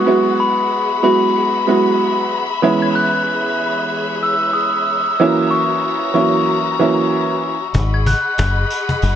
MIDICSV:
0, 0, Header, 1, 7, 480
1, 0, Start_track
1, 0, Tempo, 638298
1, 65, Time_signature, 4, 2, 24, 8
1, 6885, End_track
2, 0, Start_track
2, 0, Title_t, "Glockenspiel"
2, 0, Program_c, 0, 9
2, 300, Note_on_c, 0, 83, 92
2, 518, Note_off_c, 0, 83, 0
2, 781, Note_on_c, 0, 83, 89
2, 905, Note_off_c, 0, 83, 0
2, 2122, Note_on_c, 0, 92, 86
2, 2215, Note_off_c, 0, 92, 0
2, 2221, Note_on_c, 0, 90, 84
2, 2577, Note_off_c, 0, 90, 0
2, 3179, Note_on_c, 0, 88, 84
2, 3398, Note_off_c, 0, 88, 0
2, 3409, Note_on_c, 0, 87, 97
2, 3632, Note_off_c, 0, 87, 0
2, 4141, Note_on_c, 0, 85, 87
2, 4359, Note_off_c, 0, 85, 0
2, 4624, Note_on_c, 0, 85, 87
2, 4747, Note_off_c, 0, 85, 0
2, 5971, Note_on_c, 0, 92, 87
2, 6060, Note_off_c, 0, 92, 0
2, 6070, Note_on_c, 0, 90, 82
2, 6421, Note_off_c, 0, 90, 0
2, 6885, End_track
3, 0, Start_track
3, 0, Title_t, "String section"
3, 0, Program_c, 1, 48
3, 0, Note_on_c, 1, 68, 84
3, 0, Note_on_c, 1, 76, 83
3, 0, Note_on_c, 1, 78, 80
3, 0, Note_on_c, 1, 83, 99
3, 1955, Note_off_c, 1, 78, 0
3, 1964, Note_off_c, 1, 68, 0
3, 1979, Note_on_c, 1, 73, 80
3, 1980, Note_on_c, 1, 68, 85
3, 3876, Note_off_c, 1, 83, 0
3, 3883, Note_off_c, 1, 68, 0
3, 3905, Note_on_c, 1, 66, 83
3, 3906, Note_on_c, 1, 82, 101
3, 5792, Note_off_c, 1, 73, 0
3, 5795, Note_off_c, 1, 76, 0
3, 5805, Note_off_c, 1, 66, 0
3, 5806, Note_off_c, 1, 82, 0
3, 5827, Note_on_c, 1, 68, 88
3, 5827, Note_on_c, 1, 75, 75
3, 5827, Note_on_c, 1, 78, 77
3, 5828, Note_on_c, 1, 83, 98
3, 6885, Note_off_c, 1, 68, 0
3, 6885, Note_off_c, 1, 75, 0
3, 6885, Note_off_c, 1, 78, 0
3, 6885, Note_off_c, 1, 83, 0
3, 6885, End_track
4, 0, Start_track
4, 0, Title_t, "Upright piano"
4, 0, Program_c, 2, 0
4, 47, Note_on_c, 2, 54, 98
4, 50, Note_on_c, 2, 56, 95
4, 53, Note_on_c, 2, 59, 97
4, 56, Note_on_c, 2, 64, 83
4, 60, Note_on_c, 2, 66, 112
4, 726, Note_off_c, 2, 54, 0
4, 728, Note_off_c, 2, 56, 0
4, 729, Note_off_c, 2, 59, 0
4, 731, Note_off_c, 2, 64, 0
4, 733, Note_off_c, 2, 66, 0
4, 769, Note_on_c, 2, 54, 94
4, 772, Note_on_c, 2, 56, 81
4, 776, Note_on_c, 2, 59, 85
4, 779, Note_on_c, 2, 64, 85
4, 783, Note_on_c, 2, 66, 111
4, 1224, Note_off_c, 2, 54, 0
4, 1225, Note_off_c, 2, 56, 0
4, 1227, Note_off_c, 2, 59, 0
4, 1228, Note_off_c, 2, 64, 0
4, 1230, Note_off_c, 2, 66, 0
4, 1254, Note_on_c, 2, 54, 95
4, 1257, Note_on_c, 2, 56, 90
4, 1260, Note_on_c, 2, 59, 81
4, 1264, Note_on_c, 2, 64, 85
4, 1268, Note_on_c, 2, 66, 102
4, 1821, Note_off_c, 2, 54, 0
4, 1822, Note_off_c, 2, 56, 0
4, 1824, Note_off_c, 2, 59, 0
4, 1826, Note_off_c, 2, 64, 0
4, 1828, Note_off_c, 2, 66, 0
4, 1972, Note_on_c, 2, 52, 93
4, 1975, Note_on_c, 2, 56, 91
4, 1979, Note_on_c, 2, 59, 91
4, 1982, Note_on_c, 2, 61, 88
4, 1985, Note_on_c, 2, 64, 118
4, 3756, Note_off_c, 2, 52, 0
4, 3758, Note_off_c, 2, 56, 0
4, 3760, Note_off_c, 2, 59, 0
4, 3761, Note_off_c, 2, 61, 0
4, 3763, Note_off_c, 2, 64, 0
4, 3907, Note_on_c, 2, 52, 98
4, 3910, Note_on_c, 2, 54, 87
4, 3913, Note_on_c, 2, 58, 92
4, 3916, Note_on_c, 2, 61, 91
4, 3920, Note_on_c, 2, 64, 111
4, 4576, Note_off_c, 2, 52, 0
4, 4577, Note_off_c, 2, 54, 0
4, 4579, Note_off_c, 2, 58, 0
4, 4581, Note_off_c, 2, 61, 0
4, 4582, Note_off_c, 2, 64, 0
4, 4614, Note_on_c, 2, 52, 91
4, 4618, Note_on_c, 2, 54, 87
4, 4621, Note_on_c, 2, 58, 84
4, 4625, Note_on_c, 2, 61, 82
4, 4628, Note_on_c, 2, 64, 103
4, 5066, Note_off_c, 2, 52, 0
4, 5068, Note_off_c, 2, 54, 0
4, 5070, Note_off_c, 2, 58, 0
4, 5071, Note_off_c, 2, 61, 0
4, 5073, Note_off_c, 2, 64, 0
4, 5110, Note_on_c, 2, 52, 99
4, 5114, Note_on_c, 2, 54, 87
4, 5117, Note_on_c, 2, 58, 81
4, 5120, Note_on_c, 2, 61, 85
4, 5123, Note_on_c, 2, 64, 107
4, 5669, Note_off_c, 2, 52, 0
4, 5671, Note_off_c, 2, 54, 0
4, 5673, Note_off_c, 2, 58, 0
4, 5674, Note_off_c, 2, 61, 0
4, 5676, Note_off_c, 2, 64, 0
4, 6885, End_track
5, 0, Start_track
5, 0, Title_t, "Fingered electric bass"
5, 0, Program_c, 3, 33
5, 5828, Note_on_c, 3, 32, 107
5, 6116, Note_off_c, 3, 32, 0
5, 6312, Note_on_c, 3, 30, 107
5, 6493, Note_off_c, 3, 30, 0
5, 6790, Note_on_c, 3, 30, 96
5, 6885, Note_off_c, 3, 30, 0
5, 6885, End_track
6, 0, Start_track
6, 0, Title_t, "Cajon"
6, 5825, Note_on_c, 9, 36, 109
6, 5900, Note_off_c, 9, 36, 0
6, 6065, Note_on_c, 9, 36, 99
6, 6140, Note_off_c, 9, 36, 0
6, 6309, Note_on_c, 9, 38, 115
6, 6384, Note_off_c, 9, 38, 0
6, 6686, Note_on_c, 9, 36, 95
6, 6761, Note_off_c, 9, 36, 0
6, 6795, Note_on_c, 9, 38, 62
6, 6870, Note_off_c, 9, 38, 0
6, 6885, End_track
7, 0, Start_track
7, 0, Title_t, "Drums"
7, 5819, Note_on_c, 9, 83, 47
7, 5894, Note_off_c, 9, 83, 0
7, 6067, Note_on_c, 9, 83, 64
7, 6142, Note_off_c, 9, 83, 0
7, 6302, Note_on_c, 9, 83, 55
7, 6377, Note_off_c, 9, 83, 0
7, 6545, Note_on_c, 9, 83, 77
7, 6620, Note_off_c, 9, 83, 0
7, 6784, Note_on_c, 9, 83, 56
7, 6859, Note_off_c, 9, 83, 0
7, 6885, End_track
0, 0, End_of_file